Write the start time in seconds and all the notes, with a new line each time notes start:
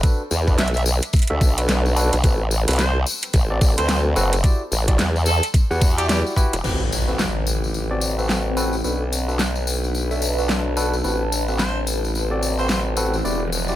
0.03 D4 F#4 A4 B4, kick, closed hi-hat, tambourine
0.31 E2, tambourine
0.48 D4 F#4 A4 B4, kick, tambourine
0.58 B1 E5, snare, closed hi-hat, tambourine
0.68 closed hi-hat
0.74 E5, closed hi-hat, tambourine
0.86 tambourine
1.02 closed hi-hat, tambourine
1.13 kick, closed hi-hat, tambourine
1.16 closed hi-hat
1.19 closed hi-hat
1.22 closed hi-hat
1.27 D2 D4 F#4 A4 E5, cross-stick, closed hi-hat
1.41 B1, kick, tambourine
1.58 D4 F#4 A4 B4, closed hi-hat, tambourine
1.68 B1, snare, closed hi-hat, tambourine
1.86 tambourine
1.96 D4 F#4 A4 B4, tambourine
2.13 B1, cross-stick, closed hi-hat, tambourine
2.24 A1 C4 F#4 A4 B4, kick, closed hi-hat, tambourine
2.51 tambourine
2.68 C2 C4 F#4 A4 B4, cross-stick, closed hi-hat, tambourine
2.71 closed hi-hat
2.73 closed hi-hat
2.76 C5, snare, closed hi-hat, tambourine
2.79 closed hi-hat
3.06 tambourine
3.22 closed hi-hat, tambourine
3.33 A1, kick, closed hi-hat, tambourine
3.50 C4 F#4 A4 D5
3.61 kick, tambourine
3.78 D2 C4 F#4 A4 B4 C5, closed hi-hat, tambourine
3.88 C5, snare, closed hi-hat, tambourine
4.16 F#1 C4 F#4 A4 B4, tambourine
4.33 closed hi-hat, tambourine
4.44 E4 F#4 G4 D5, kick, closed hi-hat, tambourine
4.71 A1, tambourine
4.88 E4 F#4 G4 D5, kick, closed hi-hat
4.99 E2, snare, closed hi-hat, tambourine
5.16 tambourine
5.26 A4, tambourine
5.43 closed hi-hat, tambourine
5.54 kick, closed hi-hat, tambourine
5.70 E2 E4 F#4 G4 F#5, cross-stick, tambourine
5.81 kick, tambourine
5.98 E4 F#4 G4 D5, closed hi-hat, tambourine
6.09 G4, snare, closed hi-hat, tambourine
6.26 tambourine
6.36 E4 F#4 G4 B4, kick, tambourine
6.53 E1, cross-stick, closed hi-hat, tambourine
6.64 A1 C4 F#4 A4 B4, crash, tambourine, impact
6.92 tambourine
6.97 B4
7.08 C4 F#4 A4 B4, tambourine
7.19 F#5, snare, tambourine
7.47 tambourine
7.64 tambourine
7.74 tambourine
7.91 C4 F#4 A4 D5
8.01 tambourine
8.18 C4 F#4 A4 B4, tambourine
8.29 snare, tambourine
8.57 C4 F#4 A4 B4, tambourine
8.73 tambourine
8.84 B1 D4 F#4 A4 B4, tambourine
9.13 tambourine
9.28 D4 F#4 A4 B4, tambourine
9.36 A5, snare, tambourine
9.55 tambourine
9.67 tambourine
9.84 tambourine
9.95 tambourine
10.11 D4 F#4 A4 E5, tambourine
10.22 tambourine
10.38 D4 F#4 A4 B4, tambourine
10.49 snare, tambourine
10.77 D4 F#4 A4 B4, tambourine
10.93 tambourine
11.04 A1 C4 F#4 A4 B4, tambourine, riser
11.32 tambourine
11.48 C4 F#4 A4 B4, tambourine
11.59 C5, snare, tambourine
11.87 F#5, tambourine
12.05 tambourine
12.15 tambourine
12.31 C4 F#4 A4 D5
12.43 tambourine
12.59 C4 F#4 A4 B4 C5, tambourine
12.69 C5, snare, tambourine
12.97 C4 F#4 A4 B4, tambourine
13.14 tambourine
13.24 E1 E4 F#4 G4 D5, tambourine
13.52 tambourine
13.68 E4 F#4 G4 D5, tambourine